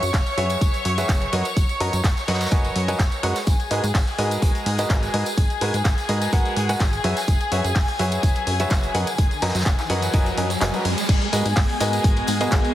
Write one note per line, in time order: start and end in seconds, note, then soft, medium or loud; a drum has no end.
0.00 0.11 F#2 medium
0.00 3.48 C#5 medium
0.00 3.48 C#6 medium
0.00 closed hi-hat soft
0.00 tambourine medium
0.14 0.24 F#1 medium
0.14 kick loud
0.14 snare loud
0.14 clap loud
0.14 closed hi-hat soft
0.14 open hi-hat medium
0.26 closed hi-hat soft
0.26 tambourine soft
0.37 0.56 F#2 medium
0.37 0.95 F#3 medium
0.37 0.95 F#4 medium
0.37 0.95 G#4 medium
0.37 0.95 B4 medium
0.37 0.95 C#5 medium
0.37 0.95 E5 medium
0.37 closed hi-hat medium
0.37 open hi-hat medium
0.50 closed hi-hat soft
0.50 tambourine medium
0.61 0.71 F#1 medium
0.61 kick loud
0.61 closed hi-hat soft
0.61 closed hi-hat medium
0.61 tambourine medium
0.74 closed hi-hat soft
0.74 tambourine soft
0.85 1.04 F#2 loud
0.85 closed hi-hat medium
0.85 open hi-hat loud
0.98 1.30 F#3 medium
0.98 1.30 F#4 medium
0.98 1.30 G#4 medium
0.98 1.30 B4 medium
0.98 1.30 C#5 medium
0.98 1.30 E5 loud
0.98 closed hi-hat soft
0.98 tambourine medium
1.09 1.28 F#1 loud
1.09 kick loud
1.09 snare loud
1.09 clap loud
1.09 closed hi-hat soft
1.09 closed hi-hat medium
1.09 tambourine medium
1.22 closed hi-hat soft
1.22 tambourine soft
1.32 1.43 F#2 medium
1.32 1.44 F#3 medium
1.32 1.44 F#4 medium
1.32 1.44 A#4 medium
1.32 1.44 B4 medium
1.32 1.44 D#5 medium
1.32 1.44 F#5 medium
1.32 closed hi-hat medium
1.32 open hi-hat loud
1.45 closed hi-hat soft
1.45 tambourine medium
1.56 1.66 F#1 medium
1.56 kick loud
1.56 closed hi-hat soft
1.56 closed hi-hat medium
1.56 tambourine medium
1.69 closed hi-hat soft
1.69 tambourine soft
1.80 1.90 F#2 medium
1.80 1.91 F#3 medium
1.80 1.91 F#4 medium
1.80 1.91 A#4 medium
1.80 1.91 B4 medium
1.80 1.91 D#5 medium
1.80 1.91 A#5 medium
1.80 closed hi-hat medium
1.80 open hi-hat loud
1.93 2.02 F#2 medium
1.93 closed hi-hat soft
1.93 tambourine medium
2.04 2.14 F#1 medium
2.04 kick loud
2.04 snare loud
2.04 clap loud
2.04 closed hi-hat soft
2.04 closed hi-hat medium
2.04 tambourine medium
2.17 snare soft
2.17 closed hi-hat soft
2.17 tambourine soft
2.28 2.47 F#2 medium
2.28 2.49 F#3 medium
2.28 2.49 F#4 medium
2.28 2.49 A#4 medium
2.28 2.49 B4 medium
2.28 2.49 D#5 medium
2.28 2.49 F#5 medium
2.28 snare medium
2.28 open hi-hat medium
2.34 snare medium
2.34 open hi-hat medium
2.40 snare medium
2.40 closed hi-hat soft
2.40 open hi-hat medium
2.40 tambourine medium
2.46 snare medium
2.46 open hi-hat medium
2.51 2.71 F#1 medium
2.51 2.85 F#3 medium
2.51 2.85 F#4 medium
2.51 2.85 A#4 medium
2.51 2.85 B4 medium
2.51 2.85 D#5 medium
2.51 2.85 G#5 loud
2.51 kick loud
2.51 closed hi-hat medium
2.51 closed hi-hat soft
2.51 tambourine medium
2.64 closed hi-hat soft
2.64 tambourine soft
2.76 2.95 F#2 medium
2.76 closed hi-hat medium
2.76 open hi-hat loud
2.88 2.98 F#3 medium
2.88 2.98 F#4 medium
2.88 2.98 A#4 medium
2.88 2.98 B4 medium
2.88 2.98 D#5 medium
2.88 2.98 G#5 loud
2.88 closed hi-hat soft
2.88 tambourine medium
2.99 3.09 F#1 medium
2.99 kick loud
2.99 snare loud
2.99 clap loud
2.99 closed hi-hat soft
2.99 closed hi-hat medium
2.99 tambourine medium
3.12 closed hi-hat soft
3.12 tambourine soft
3.23 3.33 F#2 loud
3.23 3.34 G#3 medium
3.23 3.34 F#4 medium
3.23 3.34 A#4 medium
3.23 3.34 B4 medium
3.23 3.34 D#5 medium
3.23 3.34 F#5 medium
3.23 closed hi-hat medium
3.23 open hi-hat loud
3.36 snare soft
3.36 closed hi-hat soft
3.36 tambourine medium
3.47 3.57 G#1 medium
3.47 11.08 G#4 medium
3.47 11.08 G#5 medium
3.47 kick loud
3.47 closed hi-hat soft
3.47 closed hi-hat medium
3.47 tambourine medium
3.60 closed hi-hat soft
3.60 tambourine soft
3.71 3.81 G#2 medium
3.71 3.82 G#3 medium
3.71 3.82 F#4 medium
3.71 3.82 G#4 medium
3.71 3.82 A#4 medium
3.71 3.82 B4 medium
3.71 3.82 D#5 medium
3.71 closed hi-hat medium
3.71 open hi-hat loud
3.83 3.92 G#2 medium
3.83 closed hi-hat soft
3.83 tambourine medium
3.94 4.05 G#1 medium
3.94 kick loud
3.94 snare loud
3.94 clap loud
3.94 closed hi-hat soft
3.94 open hi-hat medium
3.94 tambourine medium
4.07 closed hi-hat soft
4.07 tambourine soft
4.18 4.37 G#2 medium
4.18 4.76 G#3 medium
4.18 4.76 F#4 medium
4.18 4.76 G#4 medium
4.18 4.76 A#4 medium
4.18 4.76 B4 medium
4.18 4.76 D#5 medium
4.18 closed hi-hat medium
4.18 open hi-hat medium
4.31 closed hi-hat soft
4.31 tambourine medium
4.42 4.52 G#1 medium
4.42 kick loud
4.42 closed hi-hat soft
4.42 closed hi-hat medium
4.42 tambourine medium
4.55 closed hi-hat soft
4.55 tambourine soft
4.66 4.85 G#2 loud
4.66 closed hi-hat medium
4.66 open hi-hat loud
4.79 5.11 G#3 medium
4.79 5.11 F#4 medium
4.79 5.11 G#4 medium
4.79 5.11 A#4 medium
4.79 5.11 B4 medium
4.79 5.11 D#5 medium
4.79 closed hi-hat medium
4.79 closed hi-hat soft
4.79 tambourine medium
4.90 5.09 G#1 medium
4.90 kick loud
4.90 snare loud
4.90 clap loud
4.90 closed hi-hat medium
4.90 closed hi-hat soft
4.90 tambourine medium
5.03 closed hi-hat soft
5.03 tambourine soft
5.14 5.24 G#2 medium
5.14 5.25 G#3 medium
5.14 5.25 F#4 medium
5.14 5.25 G#4 medium
5.14 5.25 A#4 medium
5.14 5.25 B4 medium
5.14 5.25 D#5 medium
5.14 closed hi-hat medium
5.14 open hi-hat medium
5.26 closed hi-hat soft
5.26 tambourine medium
5.37 5.47 G#1 loud
5.37 kick loud
5.37 closed hi-hat medium
5.37 closed hi-hat soft
5.50 closed hi-hat soft
5.50 tambourine soft
5.61 5.71 G#2 medium
5.61 5.72 G#3 medium
5.61 5.72 F#4 medium
5.61 5.72 G#4 medium
5.61 5.72 A#4 medium
5.61 5.72 B4 medium
5.61 5.72 G#5 medium
5.61 closed hi-hat medium
5.61 open hi-hat loud
5.74 5.83 G#2 medium
5.74 closed hi-hat soft
5.74 closed hi-hat medium
5.74 tambourine medium
5.85 5.95 G#1 medium
5.85 kick loud
5.85 snare loud
5.85 clap loud
5.85 closed hi-hat medium
5.85 tambourine medium
5.98 snare soft
5.98 closed hi-hat soft
5.98 tambourine soft
6.09 6.28 G#2 medium
6.09 6.30 G#3 medium
6.09 6.30 F#4 medium
6.09 6.30 G#4 medium
6.09 6.30 A#4 medium
6.09 6.30 B4 medium
6.09 6.30 D#5 medium
6.09 closed hi-hat medium
6.09 open hi-hat medium
6.21 snare soft
6.21 closed hi-hat medium
6.21 tambourine medium
6.32 6.43 G#1 medium
6.32 6.66 G#3 medium
6.32 6.66 F#4 medium
6.32 6.66 G#4 medium
6.32 6.66 A#4 medium
6.32 6.66 B4 medium
6.32 6.66 F#5 loud
6.32 kick loud
6.32 closed hi-hat soft
6.32 closed hi-hat medium
6.32 tambourine medium
6.45 closed hi-hat soft
6.45 tambourine soft
6.56 6.75 G#2 loud
6.56 closed hi-hat medium
6.56 open hi-hat medium
6.69 6.79 G#3 medium
6.69 6.79 F#4 medium
6.69 6.79 G#4 medium
6.69 6.79 A#4 medium
6.69 6.79 B4 medium
6.69 6.79 F#5 loud
6.69 closed hi-hat medium
6.69 closed hi-hat soft
6.69 tambourine medium
6.80 6.99 G#1 loud
6.80 kick loud
6.80 snare loud
6.80 clap loud
6.80 closed hi-hat medium
6.80 tambourine medium
6.93 closed hi-hat soft
6.93 tambourine soft
7.04 7.14 F#2 medium
7.04 7.15 F#3 medium
7.04 7.15 F#4 medium
7.04 7.15 G#4 medium
7.04 7.15 B4 medium
7.04 7.15 C#5 medium
7.04 7.15 E5 loud
7.04 closed hi-hat medium
7.04 open hi-hat medium
7.17 snare soft
7.17 closed hi-hat soft
7.17 tambourine medium
7.28 7.38 F#1 loud
7.28 kick loud
7.28 closed hi-hat medium
7.28 tambourine medium
7.28 riser medium
7.41 closed hi-hat soft
7.41 tambourine soft
7.52 7.62 F#2 medium
7.52 7.63 F#3 medium
7.52 7.63 F#4 medium
7.52 7.63 G#4 medium
7.52 7.63 B4 medium
7.52 7.63 C#5 medium
7.52 7.63 E5 medium
7.52 closed hi-hat medium
7.52 open hi-hat loud
7.64 7.73 F#2 medium
7.64 closed hi-hat medium
7.64 tambourine medium
7.75 7.85 F#1 medium
7.75 kick loud
7.75 snare loud
7.75 clap loud
7.75 closed hi-hat medium
7.75 open hi-hat medium
7.75 tambourine medium
7.88 closed hi-hat soft
7.88 tambourine soft
7.99 8.18 F#2 medium
7.99 8.57 F#3 medium
7.99 8.57 F#4 medium
7.99 8.57 G#4 medium
7.99 8.57 B4 medium
7.99 8.57 C#5 medium
7.99 8.57 E5 medium
7.99 closed hi-hat medium
7.99 open hi-hat medium
8.12 closed hi-hat medium
8.12 tambourine medium
8.23 8.33 F#1 medium
8.23 kick loud
8.23 closed hi-hat medium
8.23 tambourine medium
8.35 closed hi-hat soft
8.35 tambourine soft
8.46 8.66 F#2 loud
8.46 closed hi-hat medium
8.46 open hi-hat loud
8.60 8.92 F#3 medium
8.60 8.92 F#4 medium
8.60 8.92 G#4 medium
8.60 8.92 B4 medium
8.60 8.92 C#5 medium
8.60 8.92 E5 loud
8.60 closed hi-hat soft
8.60 closed hi-hat medium
8.60 tambourine medium
8.70 8.90 F#1 loud
8.70 kick loud
8.70 snare loud
8.70 clap loud
8.70 closed hi-hat medium
8.70 tambourine medium
8.83 closed hi-hat soft
8.83 tambourine soft
8.94 9.04 F#2 medium
8.94 9.06 F#3 medium
8.94 9.06 F#4 medium
8.94 9.06 A#4 medium
8.94 9.06 B4 medium
8.94 9.06 D#5 medium
8.94 9.06 F#5 medium
8.94 closed hi-hat medium
8.94 open hi-hat medium
9.07 closed hi-hat medium
9.07 tambourine medium
9.18 9.28 F#1 medium
9.18 kick loud
9.18 closed hi-hat medium
9.18 tambourine medium
9.31 closed hi-hat soft
9.31 tambourine soft
9.42 9.52 F#2 medium
9.42 9.53 F#3 medium
9.42 9.53 F#4 medium
9.42 9.53 A#4 medium
9.42 9.53 B4 medium
9.42 9.53 D#5 medium
9.42 9.53 A#5 medium
9.42 snare medium
9.42 open hi-hat medium
9.42 open hi-hat loud
9.48 snare medium
9.48 open hi-hat medium
9.55 9.64 F#2 medium
9.55 snare medium
9.55 closed hi-hat medium
9.55 open hi-hat medium
9.55 tambourine medium
9.60 snare medium
9.60 open hi-hat medium
9.66 9.76 F#1 medium
9.66 kick loud
9.66 snare loud
9.66 clap loud
9.66 closed hi-hat medium
9.79 snare soft
9.79 clap soft
9.79 closed hi-hat soft
9.79 tambourine soft
9.90 10.09 F#2 medium
9.90 10.11 F#3 medium
9.90 10.11 F#4 medium
9.90 10.11 A#4 medium
9.90 10.11 B4 medium
9.90 10.11 D#5 medium
9.90 10.11 F#5 medium
9.90 closed hi-hat medium
9.90 open hi-hat medium
10.02 snare soft
10.02 closed hi-hat medium
10.02 tambourine medium
10.13 10.33 F#1 loud
10.13 10.35 F#3 loud
10.13 10.35 F#4 medium
10.13 10.35 A#4 medium
10.13 10.35 B4 medium
10.13 10.35 D#5 medium
10.13 10.35 G#5 loud
10.13 kick loud
10.13 closed hi-hat loud
10.13 closed hi-hat medium
10.13 tambourine medium
10.26 closed hi-hat soft
10.26 tambourine soft
10.37 10.56 F#2 medium
10.37 10.49 F#3 medium
10.37 10.49 F#4 medium
10.37 10.49 A#4 medium
10.37 10.49 B4 medium
10.37 10.49 D#5 medium
10.37 10.49 G#5 medium
10.37 closed hi-hat medium
10.37 open hi-hat loud
10.50 closed hi-hat medium
10.50 closed hi-hat soft
10.50 tambourine medium
10.61 10.71 F#1 medium
10.61 10.72 F#3 medium
10.61 10.72 F#4 medium
10.61 10.72 A#4 medium
10.61 10.72 B4 medium
10.61 10.72 D#5 medium
10.61 10.72 G#5 loud
10.61 snare loud
10.61 clap loud
10.61 closed hi-hat medium
10.61 tambourine medium
10.74 10.84 F#3 medium
10.74 10.84 F#4 medium
10.74 10.84 A#4 medium
10.74 10.84 B4 medium
10.74 10.84 D#5 medium
10.74 10.84 A#5 medium
10.74 closed hi-hat soft
10.74 tambourine soft
10.85 10.95 F#2 loud
10.85 closed hi-hat medium
10.85 open hi-hat medium
10.97 closed hi-hat soft
10.97 closed hi-hat medium
10.97 tambourine medium
11.09 11.19 G#1 loud
11.09 12.74 B3 medium
11.09 12.74 G#4 medium
11.09 12.74 G#5 medium
11.09 kick loud
11.09 closed hi-hat medium
11.09 crash loud
11.09 tambourine soft
11.22 12.74 F#5 medium
11.22 closed hi-hat soft
11.22 tambourine soft
11.32 11.43 G#2 medium
11.32 11.44 G#3 medium
11.32 11.44 F#4 medium
11.32 11.44 G#4 medium
11.32 11.44 A#4 medium
11.32 11.44 B4 medium
11.32 11.44 D#5 medium
11.32 closed hi-hat medium
11.32 open hi-hat loud
11.32 tambourine medium
11.32 tambourine loud
11.45 11.54 G#2 medium
11.45 closed hi-hat medium
11.45 tambourine soft
11.56 11.66 G#1 medium
11.56 kick loud
11.56 snare loud
11.56 clap loud
11.56 closed hi-hat medium
11.56 open hi-hat medium
11.56 tambourine soft
11.66 12.74 G#4 medium
11.66 closed hi-hat soft
11.66 tambourine soft
11.80 11.99 G#2 medium
11.80 12.38 G#3 medium
11.80 12.38 F#4 medium
11.80 12.38 G#4 medium
11.80 12.38 A#4 medium
11.80 12.38 B4 medium
11.80 12.38 D#5 medium
11.80 closed hi-hat medium
11.80 open hi-hat medium
11.80 tambourine loud
11.80 tambourine medium
11.93 closed hi-hat medium
11.93 tambourine medium
11.93 tambourine soft
12.04 12.23 G#1 loud
12.04 kick loud
12.04 closed hi-hat medium
12.04 tambourine soft
12.16 closed hi-hat soft
12.16 tambourine soft
12.27 12.47 G#2 medium
12.27 closed hi-hat medium
12.27 open hi-hat loud
12.27 tambourine medium
12.41 12.73 G#3 medium
12.41 12.73 F#4 medium
12.41 12.73 G#4 medium
12.41 12.73 A#4 medium
12.41 12.73 B4 medium
12.41 12.73 D#5 medium
12.41 closed hi-hat medium
12.41 closed hi-hat soft
12.41 tambourine soft
12.51 12.62 G#1 medium
12.51 kick loud
12.51 snare loud
12.51 clap loud
12.51 closed hi-hat medium
12.51 closed hi-hat loud
12.51 tambourine soft
12.64 closed hi-hat soft
12.64 tambourine soft